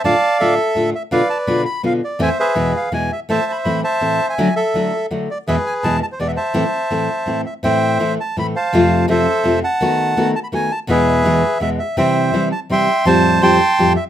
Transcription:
<<
  \new Staff \with { instrumentName = "Bandoneon" } { \time 3/4 \key a \minor \tempo 4 = 166 << { a''4 e''4. e''8 | f''8 a''8 b''8 b''8 f''8 d''8 | gis''8 e''4 f''8 gis''8 e''8 | \tuplet 3/2 { a''4 b''8 } b''8 a''4~ a''16 gis''16~ |
gis''8 e''4. r8 d''8 | e''8 gis''8 a''8 a''16 c''16 d''16 e''16 a''8~ | a''2~ a''8 e''8 | g''4 r8 a''8 b''8 a''8~ |
a''4 e''4. a''8~ | a''4. a''16 b''16 gis''8 a''8 | e''2 e''8 e''8 | g''4 r8 a''8 c'''4 |
a''4 c'''4. e''8 | } \\ { <d'' f''>4 a'4. r8 | <b' d''>4. r4. | <c'' e''>8 <gis' b'>4. r4 | <c'' e''>4. <c'' e''>4~ <c'' e''>16 e''16~ |
e''8 a'4. r4 | <gis' b'>4. r4 <c'' e''>8~ | <c'' e''>2~ <c'' e''>8 r8 | <c'' e''>4. r4 <c'' f''>8~ |
<c'' f''>4 <a' c''>4. fis''8~ | fis''4. r4. | <gis' b'>2 r4 | <c'' e''>4. r8 <e'' g''>4 |
c''4 <g'' a''>4. r8 | } >> }
  \new Staff \with { instrumentName = "Nylon-string guitar" } { \clef bass \time 3/4 \key a \minor <a, d a d' f'>16 r8. <a, d a d' f'>8 r8 <a, d a d' f'>8 r8 | <b, d b d' f'>16 r8. <b, d b d' f'>8 r8 <b, d b d' f'>8 r8 | <e, a, e a c' e'>16 r8. <e, b, e gis b e'>8 r8 <e, b, e gis b e'>8 r8 | <a, e a c' e'>16 r8. <a, e a c' e'>8 r8 <a, e a c' e'>8 r8 |
<d fis a d' e'>16 r8. <d fis a d' e'>8 r8 <d fis a d' e'>8 r8 | <e, b, e gis b e'>16 r8. <e, b, e gis b e'>8 r8 <e, b, e gis b e'>8 r8 | <a, e a c' e'>16 r8. <a, e a c' e'>8 r8 <a, e a c' e'>8 r8 | <a, e a c' e'>4 <a, e a c' e'>8 r8 <a, e a c' e'>8 r8 |
<f, c f a c' f'>4 <f, c f a c' f'>8 r8 <f, c f a c' f'>8 r8 | <dis a b fis'>4 <dis a b fis'>8 r8 <dis a b fis'>8 r8 | <e, b, e gis b e'>4 <e, b, e gis b e'>8 r8 <e, b, e gis b e'>8 r8 | <c e g c' e'>4 <c e g c' e'>8 r8 <c e g c' e'>8 r8 |
<f, a, f g c' g'>4 <f, a, f g c' g'>8 r8 <f, a, f g c' g'>8 r8 | }
>>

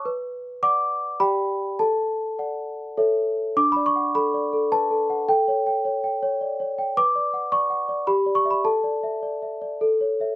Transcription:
\new Staff \with { instrumentName = "Celesta" } { \time 3/4 \key d \major \tempo 4 = 104 << { r4 d'''4 b''4 | a''2~ a''8 r8 | d'''16 b''16 cis'''8 b''4 a''4 | g''2~ g''8 r8 |
d'''4 cis'''4 b''8 cis'''16 b''16 | a''2 r4 | } \\ { b'4 <d'' fis''>4 <g' d'' g''>4 | a'4 <d'' fis''>4 <a' cis'' e''>4 | \tuplet 3/2 { d'8 d''8 fis''8 a'8 d''8 a'8 b'8 a'8 fis''8 } | \tuplet 3/2 { a'8 cis''8 g''8 cis''8 g''8 cis''8 d''8 cis''8 g''8 } |
\tuplet 3/2 { b'8 d''8 fis''8 d''8 fis''8 d''8 g'8 d''8 <d'' e''>8 } | \tuplet 3/2 { a'8 d''8 e''8 d''8 e''8 d''8 a'8 cis''8 <cis'' e''>8 } | } >> }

